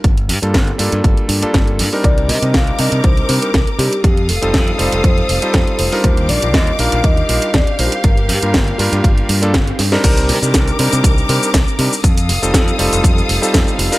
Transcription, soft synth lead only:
X:1
M:4/4
L:1/16
Q:"Swing 16ths" 1/4=120
K:Cdor
V:1 name="Soft synth lead"
z16 | d2 e2 f2 e2 c3 B3 G2 | G2 A4 c8 c2- | c2 d2 e2 f2 e4 d2 c2 |
B12 z4 | z16 | z16 |]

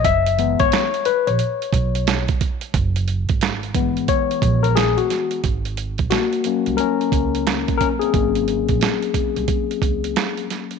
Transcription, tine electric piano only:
X:1
M:4/4
L:1/16
Q:"Swing 16ths" 1/4=89
K:Gblyd
V:1 name="Tine electric piano"
_f3 d3 _c d6 z3 | z8 d3 B A G3 | z4 [B,G]4 [DB]6 [DB] [CA]- | [CA]12- [CA]2 z2 |]
V:2 name="Tine electric piano"
z2 [_F,A,_C]2 z12 | z6 [_F,A,_C]8- [F,A,C]2 | z6 [G,B,D]8- [G,B,D]2 | [G,B,D]16 |]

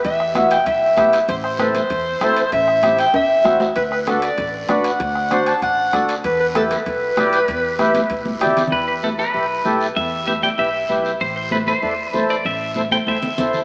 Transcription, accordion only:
X:1
M:4/4
L:1/8
Q:1/4=194
K:Em
V:1 name="Accordion"
z2 [B,EF] z3 [B,EG] z | z2 [CEA] z3 [CEA] z | z2 [CEG] z3 [CEF] z | z2 [DFA] z3 [DFB] z |
z2 [DFc] z3 [DFA] z | z2 [EGB] z3 [EGd] z | z2 [EGB] z3 [EGd] z | z2 [EGB] [EGB] [EGB] z [EGA] z |
z2 [EGB] [EGd] [EGB] z [EGB] z | z2 [EAc] [EAc] [EAd] z [EAc] z | z2 [EAc] [EAc] [EAc] z [EAc] z |]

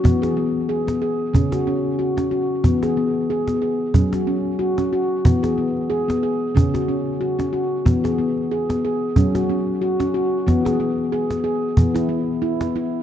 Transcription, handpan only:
X:1
M:4/4
L:1/16
Q:"Swing 16ths" 1/4=92
K:E
V:1 name="Handpan"
B, G B,2 G B, G2 C F C2 F C F2 | B, G B,2 G B, G2 C F C2 F C F2 | B, G B,2 G B, G2 C F C2 F C F2 | B, G B,2 G B, G2 C F C2 F C F2 |
B, G B,2 G B, G2 B, E B,2 E B, E2 |]
V:2 name="Handpan" clef=bass
E,8 C,8 | E,8 F,8 | E,8 C,8 | E,8 F,8 |
E,8 E,8 |]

